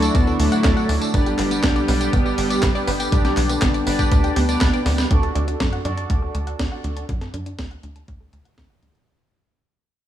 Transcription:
Already playing: analog synth bass D2, analog synth pad D3 F#3 A3 E4, soft synth lead D4, analog polysynth D4 F#4 A4 D5
0.02 synth arpeggio sound A5, closed hi-hat, tambourine
0.15 analog synth bass D2, soft synth lead B3, synth arpeggio sound D4, kick, closed hi-hat, tambourine
0.27 synth arpeggio sound A4, tambourine
0.39 analog synth bass D2, soft synth lead A3, synth arpeggio sound A5, open hi-hat
0.52 analog polysynth D4 F#4 A4 D5, synth arpeggio sound F#5, closed hi-hat, tambourine
0.64 analog synth bass D2, synth arpeggio sound D4, kick, snare, clap, closed hi-hat, tambourine
0.77 synth arpeggio sound F#5, tambourine
0.89 analog synth bass D2, synth arpeggio sound D4, open hi-hat
1.02 synth arpeggio sound A5, closed hi-hat, tambourine
1.14 analog synth bass G1, analog synth pad G3 B3 G4, synth arpeggio sound B3, soft synth lead D4, analog polysynth D4 G4 B4 D5, kick, closed hi-hat, tambourine
1.26 synth arpeggio sound G4, closed hi-hat, tambourine
1.39 analog synth bass G1, synth arpeggio sound B3, clap, open hi-hat
1.51 synth arpeggio sound B3, closed hi-hat, tambourine
1.63 analog synth bass B1, synth arpeggio sound B3, kick, snare, clap, closed hi-hat, tambourine
1.76 synth arpeggio sound D5, closed hi-hat, tambourine
1.88 analog synth bass B1, synth arpeggio sound B3, analog polysynth D4 G4 B4 D5, open hi-hat
2.01 synth arpeggio sound G5, closed hi-hat, tambourine
2.13 analog synth bass G1, synth arpeggio sound B3, soft synth lead B3, kick, closed hi-hat, tambourine
2.25 synth arpeggio sound G4, tambourine
2.38 analog synth bass G1, synth arpeggio sound G5, open hi-hat
2.50 synth arpeggio sound D5, closed hi-hat, tambourine
2.63 analog synth bass G1, synth arpeggio sound B3, kick, snare, clap, closed hi-hat, tambourine
2.75 synth arpeggio sound D5, tambourine
2.87 analog synth bass G1, synth arpeggio sound B3, soft synth lead D4, open hi-hat
3.00 synth arpeggio sound G5, closed hi-hat, tambourine
3.12 analog synth bass B1, synth arpeggio sound B3, analog polysynth D4 G4 B4 D5, kick, closed hi-hat, tambourine
3.25 synth arpeggio sound G4, snare, closed hi-hat, tambourine
3.37 analog synth bass B1, synth arpeggio sound B3, clap, open hi-hat
3.49 synth arpeggio sound B3, closed hi-hat, tambourine
3.62 analog synth bass G1, synth arpeggio sound B3, kick, snare, clap, closed hi-hat, tambourine
3.74 synth arpeggio sound D5, closed hi-hat, tambourine
3.87 analog synth bass G1, synth arpeggio sound B3, analog polysynth D4 G4 B4 D5, open hi-hat
3.99 synth arpeggio sound G5, kick, closed hi-hat, tambourine
4.12 analog synth bass D2, synth arpeggio sound B3, kick, closed hi-hat, tambourine
4.24 synth arpeggio sound G4, closed hi-hat, tambourine
4.36 analog synth bass D2, soft synth lead B3, synth arpeggio sound G5, open hi-hat
4.49 analog polysynth D4 G4 B4 D5, synth arpeggio sound D5, closed hi-hat, tambourine
4.61 analog synth bass D2, synth arpeggio sound B3, kick, snare, clap, closed hi-hat, tambourine
4.73 synth arpeggio sound D5, closed hi-hat, tambourine
4.86 analog synth bass D2, synth arpeggio sound B3, snare, open hi-hat
4.98 synth arpeggio sound G5, snare, closed hi-hat, tambourine
5.11 analog synth bass D2, synth arpeggio sound D4, analog polysynth D4 F#4 A4 D5, kick, closed hi-hat
5.23 synth arpeggio sound A4, closed hi-hat
5.35 analog synth bass D2, synth arpeggio sound D4, closed hi-hat
5.48 synth arpeggio sound D4, closed hi-hat
5.60 analog synth bass F#2, synth arpeggio sound D4, kick, snare, closed hi-hat
5.73 synth arpeggio sound F#5, closed hi-hat
5.85 analog synth bass F#2, synth arpeggio sound D4, analog polysynth D4 F#4 A4 D5, closed hi-hat
5.97 synth arpeggio sound A5, closed hi-hat
6.10 analog synth bass D2, synth arpeggio sound D4, kick, closed hi-hat
6.22 synth arpeggio sound A4
6.35 analog synth bass D2, synth arpeggio sound A5, closed hi-hat
6.47 synth arpeggio sound F#5, closed hi-hat
6.59 analog synth bass D2, synth arpeggio sound D4, kick, snare, closed hi-hat
6.72 synth arpeggio sound F#5
6.84 analog synth bass D2, synth arpeggio sound D4, closed hi-hat
6.97 synth arpeggio sound A5, closed hi-hat
7.09 analog synth bass F#2, synth arpeggio sound D4, kick, closed hi-hat
7.21 synth arpeggio sound A4, snare, closed hi-hat
7.34 analog synth bass F#2, synth arpeggio sound D4, closed hi-hat
7.46 synth arpeggio sound D4, closed hi-hat
7.59 analog synth bass D2, synth arpeggio sound D4, kick, snare, closed hi-hat
7.71 synth arpeggio sound F#5, closed hi-hat
7.83 analog synth bass D2, synth arpeggio sound D4, closed hi-hat
7.96 synth arpeggio sound A5, closed hi-hat
8.08 analog synth bass D2, synth arpeggio sound D4, kick, closed hi-hat
8.21 synth arpeggio sound A4
8.33 analog synth bass D2, synth arpeggio sound A5, closed hi-hat
8.45 synth arpeggio sound F#5, closed hi-hat
8.58 analog synth bass D2, synth arpeggio sound D4, kick, snare, closed hi-hat
8.70 synth arpeggio sound F#5
8.82 analog synth bass D2, synth arpeggio sound D4, closed hi-hat
8.95 synth arpeggio sound A5, closed hi-hat

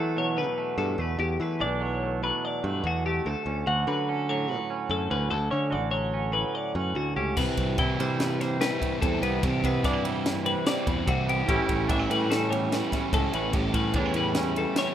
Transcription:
Already playing: clean electric guitar E2 E3 F#3 A3 D4 A4, picked electric bass E3
0.16 clean electric guitar B2 F#3 C#5
0.38 clean electric guitar B4
0.58 clean electric guitar A3
0.77 clean electric guitar E2 A4, picked electric bass G2
0.98 picked electric bass E2, clean electric guitar A3 B4
1.18 clean electric guitar E2 G4, picked electric bass E2
1.40 picked electric bass E3, clean electric guitar A3 B4
1.60 picked electric bass B1, clean electric guitar E3 D4 D5
1.80 clean electric guitar F#3 C#5
2.02 clean electric guitar A3
2.22 clean electric guitar B2 F#3 B4
2.45 clean electric guitar D5
2.63 picked electric bass G2, clean electric guitar A3 B4
2.84 picked electric bass E2, clean electric guitar E2 F#4
3.06 clean electric guitar A3 G4
3.26 picked electric bass D2, clean electric guitar D2 A4
3.46 picked electric bass D2, clean electric guitar C#4
3.67 picked electric bass D2, clean electric guitar D3 F#4 F#5
3.87 picked electric bass D3, clean electric guitar F#3 B4
4.09 clean electric guitar C#4 A4
4.29 clean electric guitar A2 F#3 C#5
4.49 clean electric guitar B4
4.70 clean electric guitar C#4
4.89 clean electric guitar D2 A4, picked electric bass F#2
5.10 picked electric bass D2, clean electric guitar C#4 B4
5.29 clean electric guitar D2 A4, picked electric bass D2
5.51 picked electric bass D3, clean electric guitar C#4 C#5
5.70 picked electric bass A1, clean electric guitar D3 F#4 D5
5.91 clean electric guitar F#3 C#5
6.14 clean electric guitar C#4
6.33 clean electric guitar A2 F#3 B4
6.55 clean electric guitar D5
6.75 picked electric bass F#2, clean electric guitar C#4 B4
6.95 picked electric bass D2, clean electric guitar D2 F#4
7.16 picked electric bass C#2, clean electric guitar C#4 G4
7.37 picked electric bass C2, overdriven electric guitar C3 E3 G3 C4 E4, clean electric guitar C3 B4, kick, crash
7.57 picked electric bass C2, overdriven electric guitar G3 C4 E4, kick, ride
7.77 picked electric bass C2, overdriven electric guitar C3 E3 G3 C4 E4, clean electric guitar E3 E4 G5, kick, ride
7.98 picked electric bass C3, overdriven electric guitar G3 C4 E4, clean electric guitar G3 C5, ride
8.20 clean electric guitar B4, snare, ride
8.40 clean electric guitar C3 G3 C5, snare, ride
8.60 overdriven electric guitar E3 G3 C4 E4, clean electric guitar B4, snare, ride
8.80 overdriven electric guitar G3 C4 E4, kick, ride
9.00 picked electric bass E2, overdriven electric guitar C3 E3 G3 C4 E4, clean electric guitar C3 A4, kick, ride
9.21 picked electric bass C2, overdriven electric guitar G3 C4 E4, clean electric guitar B3 B4, ride
9.41 picked electric bass C2, overdriven electric guitar C3 E3 G3 C4 E4, clean electric guitar C3 G4, kick, ride
9.62 picked electric bass C3, overdriven electric guitar G3 C4 E4, clean electric guitar B3 B4, kick, ride
9.82 picked electric bass G2, overdriven electric guitar C3 E3 G3 C4 E4, clean electric guitar E3 D4 D5, kick, snare, ride
9.93 clean electric guitar E4
10.03 clean electric guitar G3 C5, overdriven electric guitar G3 C4 E4, ride
10.26 snare, ride
10.44 clean electric guitar C3 G3 B4, ride
10.66 overdriven electric guitar E3 G3 C4 E4, clean electric guitar D5, snare, ride
10.86 picked electric bass E2, overdriven electric guitar G3 C4 E4, clean electric guitar B4, kick, ride
11.06 picked electric bass C2, clean electric guitar C3 F#4, overdriven electric guitar C3 E3 G3 C4 E4, kick, ride
11.26 overdriven electric guitar G3 C4 E4, clean electric guitar B3 G4, ride
11.46 picked electric bass A1, clean electric guitar A2 E3 G3 C#4 E4 G4, overdriven electric guitar A2 E3 G3, kick, ride
11.50 overdriven electric guitar C#4 E4
11.69 picked electric bass A1, overdriven electric guitar G3 C#4 E4, clean electric guitar C#4, kick, ride
11.88 picked electric bass A1, overdriven electric guitar A2 E3 G3 C#4 E4, clean electric guitar E3 D4 E5, kick, ride
11.99 clean electric guitar E4
12.09 picked electric bass A2, clean electric guitar G3 B4, overdriven electric guitar G3 C#4 E4, ride
12.30 clean electric guitar C#4 A4, snare, ride
12.51 clean electric guitar E2 G3 C#5, ride
12.72 overdriven electric guitar E3 G3 C#4 E4, clean electric guitar B4, snare, ride
12.92 overdriven electric guitar G3 C#4 E4, clean electric guitar C#4, kick, snare, ride
13.12 picked electric bass C#2, overdriven electric guitar A2 E3 G3 C#4 E4, clean electric guitar A2 A4, kick, ride
13.32 picked electric bass A1, overdriven electric guitar G3 C#4 E4, clean electric guitar C#4 B4, ride
13.52 picked electric bass A1, overdriven electric guitar A2 E3 G3 C#4 E4, clean electric guitar A2 G4, kick, ride
13.73 picked electric bass A2, overdriven electric guitar G3 C#4 E4, clean electric guitar C#4 B4, kick, ride
13.93 picked electric bass E2, overdriven electric guitar A2 E3 G3 C#4 E4, clean electric guitar E3 D4 C#5, kick, ride
14.06 clean electric guitar E4
14.14 overdriven electric guitar G3 C#4 E4, clean electric guitar B4, ride
14.19 clean electric guitar G3
14.35 clean electric guitar C#4, snare, ride
14.56 clean electric guitar E2 G3 A4, ride
14.76 overdriven electric guitar E3 G3 C#4 E4, clean electric guitar C#5, snare, ride

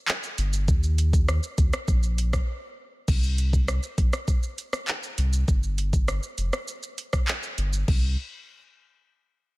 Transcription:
0.08 clap, shaker
0.23 shaker
0.38 sub bass G1, closed hi-hat, shaker
0.53 shaker
0.68 sub bass D#2, kick, shaker
0.83 shaker
0.98 closed hi-hat, shaker
1.13 kick, shaker
1.28 cross-stick, shaker
1.43 shaker
1.58 sub bass D2, kick, closed hi-hat, shaker
1.73 cross-stick, shaker
1.88 sub bass A#1, kick, shaker
2.03 shaker
2.18 closed hi-hat, shaker
2.33 kick, cross-stick, shaker
3.08 sub bass C2, kick, crash, shaker
3.23 shaker
3.38 closed hi-hat, shaker
3.53 kick, shaker
3.68 cross-stick, shaker
3.83 shaker
3.98 sub bass A#1, kick, closed hi-hat, shaker
4.13 cross-stick, shaker
4.28 kick, shaker
4.43 shaker
4.58 closed hi-hat, shaker
4.73 cross-stick, shaker
4.88 clap, shaker
5.03 shaker
5.18 sub bass C2, closed hi-hat, shaker
5.33 shaker
5.48 sub bass G1, kick, shaker
5.63 shaker
5.78 closed hi-hat, shaker
5.93 kick, shaker
6.08 cross-stick, shaker
6.23 shaker
6.38 sub bass F1, closed hi-hat, shaker
6.53 cross-stick, shaker
6.68 shaker
6.83 shaker
6.98 closed hi-hat, shaker
7.13 kick, cross-stick, shaker
7.28 clap, shaker
7.43 shaker
7.58 sub bass G1, closed hi-hat, shaker
7.73 shaker
7.88 sub bass C2, kick, crash

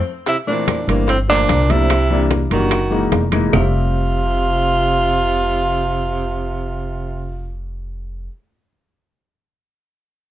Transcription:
0.26 baritone saxophone C3, tenor saxophone E4, high bongo, high conga, high timbale
0.47 baritone saxophone A#2, grand piano E3 A3 C4 D4, tenor saxophone D4, high conga
0.68 high bongo, high conga, high timbale, claves
0.87 upright bass G1, baritone saxophone G2, grand piano E3 A3 C4 D4, tenor saxophone A#3, high conga, high timbale
1.08 baritone saxophone A2, tenor saxophone C4, high bongo, high conga, high timbale
1.28 baritone saxophone A#2, grand piano F3 A3 A#3 D4, tenor saxophone D4, high conga
1.49 upright bass C2, high bongo, low bongo, high conga, high timbale, claves
1.68 baritone saxophone C3, grand piano F3 A3 A#3 D4, tenor saxophone E4, high conga, high timbale
1.90 high bongo, high conga, high timbale, claves
2.10 grand piano E3 G3 A#3 D4, high bongo, high conga
2.31 high bongo, high conga, high timbale
2.50 upright bass F#1, baritone saxophone D#3, grand piano E3 G3 A#3 D4, tenor saxophone F#4, high bongo, high conga, high timbale
2.71 high bongo, high conga, high timbale, claves
2.90 grand piano E3 G#3 A#3 D#4, high bongo, high conga
3.12 upright bass F1, high bongo, low bongo, high conga, high timbale, low timbale
3.32 grand piano E3 G#3 A#3 D#4, high conga, high timbale, claves
3.50 upright bass F1, baritone saxophone C3, grand piano G3 A3 C4, low bongo, low conga, low timbale, claves
3.54 tenor saxophone F4, grand piano E5

